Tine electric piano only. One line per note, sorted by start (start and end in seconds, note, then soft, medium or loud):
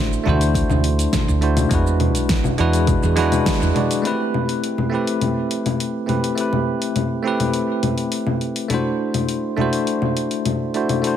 0.00 0.21 A3 medium
0.00 0.22 D4 medium
0.00 0.22 E4 medium
0.00 0.23 F#4 medium
0.00 0.24 C5 loud
0.23 1.38 A3 medium
0.23 1.39 D4 medium
0.23 1.39 E4 medium
0.28 1.40 F#4 medium
0.28 1.41 C5 medium
1.41 1.68 A3 medium
1.41 1.68 D4 medium
1.41 1.68 E4 medium
1.41 1.69 F#4 medium
1.41 1.69 C5 medium
1.69 2.54 G#3 medium
1.69 2.55 D4 medium
1.69 2.56 E4 medium
1.74 2.57 F#4 medium
1.74 2.57 B4 medium
2.58 3.14 G#3 medium
2.58 3.14 D4 medium
2.58 3.15 E4 medium
2.58 3.15 F#4 medium
2.58 3.15 B4 loud
3.16 3.71 G#3 loud
3.16 3.72 D4 medium
3.16 3.72 E4 medium
3.16 3.73 F#4 medium
3.16 3.73 B4 loud
3.75 4.01 G#3 medium
3.75 4.01 D4 medium
3.75 4.01 E4 medium
3.75 4.02 F#4 medium
3.75 4.02 D5 medium
4.02 4.87 A3 medium
4.02 4.88 C4 medium
4.02 4.89 E4 medium
4.06 4.89 G4 medium
4.06 4.90 B4 medium
4.90 6.04 A3 medium
4.90 6.05 C4 medium
4.90 6.05 E4 medium
4.94 6.06 G4 medium
4.94 6.07 B4 medium
6.06 6.33 A3 medium
6.06 6.34 C4 medium
6.06 6.34 E4 medium
6.06 6.34 G4 medium
6.06 6.35 B4 medium
6.35 7.21 A3 medium
6.35 7.21 C4 medium
6.35 7.22 E4 medium
6.39 7.23 G4 medium
6.39 7.23 B4 medium
7.23 8.66 A3 medium
7.23 8.67 C4 medium
7.23 8.67 E4 medium
7.23 8.68 G4 medium
7.28 8.69 B4 medium
8.69 9.54 A3 medium
8.69 9.54 D4 medium
8.69 9.55 E4 medium
8.73 9.56 F#4 medium
8.73 9.56 C5 medium
9.56 10.70 A3 medium
9.56 10.71 D4 medium
9.56 10.72 E4 medium
9.56 10.72 F#4 medium
9.61 10.73 C5 medium
10.74 11.00 A3 medium
10.74 11.01 D4 medium
10.74 11.01 E4 medium
10.74 11.01 F#4 medium
10.74 11.01 C5 medium
11.02 11.17 A3 medium
11.02 11.17 D4 medium
11.02 11.17 E4 medium
11.06 11.17 F#4 medium
11.06 11.17 C5 medium